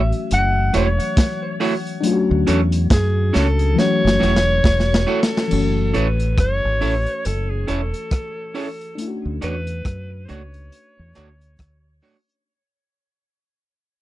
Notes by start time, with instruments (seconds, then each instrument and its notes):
Already playing: fingered electric bass A1, fm electric piano E3 F#3 A3 C#4 F#4, alto saxophone E5
0.12 closed hi-hat
0.31 fingered electric bass F#1, alto saxophone F#5, closed hi-hat
0.73 fingered electric bass E1, clean electric guitar A3 E4 F#4 C#5, alto saxophone C#5, closed hi-hat
1.00 closed hi-hat
1.17 kick, snare, closed hi-hat
1.60 clean electric guitar A3 E4 F#4 C#5, open hi-hat
1.87 closed hi-hat
2.01 fm electric piano F#3 A3 D4, closed hi-hat
2.05 fm electric piano C#4 F4
2.13 fm electric piano F#4
2.31 fingered electric bass D2
2.47 fingered electric bass E2, clean electric guitar C#4 F#4 A4 C#5, closed hi-hat
2.72 closed hi-hat
2.90 fingered electric bass F#2, alto saxophone G#4, kick, snare, closed hi-hat
3.33 fingered electric bass C#2, clean electric guitar C#4 F#4 A4 C#5, alto saxophone A4, snare, closed hi-hat
3.59 closed hi-hat
3.74 fm electric piano E3 F#3 A3
3.78 fm electric piano C#4 F#4, alto saxophone C#5, snare
4.05 fingered electric bass F#1, snare
4.20 fingered electric bass E1, clean electric guitar A3 E4 F#4 C#5, snare
4.36 snare
4.64 fingered electric bass E1, kick, snare
4.80 snare
4.94 snare
5.06 clean electric guitar A3 E4 F#4 C#5, alto saxophone A4
5.23 snare
5.37 snare
5.47 fm electric piano E3 A3, crash
5.52 fingered electric bass F#1, fm electric piano C#4 F#4
5.94 fingered electric bass A1, clean electric guitar C#4 E4 A4 C#5, alto saxophone B4, closed hi-hat
6.20 closed hi-hat
6.38 fingered electric bass F#1, alto saxophone C#5, kick, cross-stick, closed hi-hat
6.65 fingered electric bass G#1
6.81 fingered electric bass A1, clean electric guitar C#4 E4 A4 C#5, open hi-hat
7.06 closed hi-hat
7.25 fingered electric bass F#1, alto saxophone A4, closed hi-hat
7.51 alto saxophone G#4
7.67 fingered electric bass E1, clean electric guitar C#4 E4 A4 C#5, alto saxophone A4, closed hi-hat
7.94 closed hi-hat
8.11 kick, cross-stick, closed hi-hat
8.54 clean electric guitar C#4 E4 A4 C#5, alto saxophone A4, open hi-hat
8.81 closed hi-hat
8.95 fm electric piano A3 C#4 D4, closed hi-hat
9.01 fm electric piano E4
9.08 fm electric piano F#4
9.25 fingered electric bass D2
9.41 fingered electric bass E2, clean electric guitar A3 D4 F#4 C#5, alto saxophone B4, closed hi-hat
9.67 closed hi-hat
9.85 fingered electric bass F#2, kick, cross-stick, closed hi-hat
10.25 clean electric guitar A3 D4 F#4, alto saxophone C5, closed hi-hat
10.30 fingered electric bass C#2, clean electric guitar C#5, alto saxophone C#5
10.54 closed hi-hat
10.72 closed hi-hat
10.99 fingered electric bass E2
11.15 fingered electric bass D2, clean electric guitar A3 D4 F#4 C#5, cross-stick, closed hi-hat
11.41 closed hi-hat
11.59 fingered electric bass D2, kick, cross-stick, closed hi-hat
12.02 clean electric guitar A3 D4 F#4 C#5, open hi-hat
12.29 closed hi-hat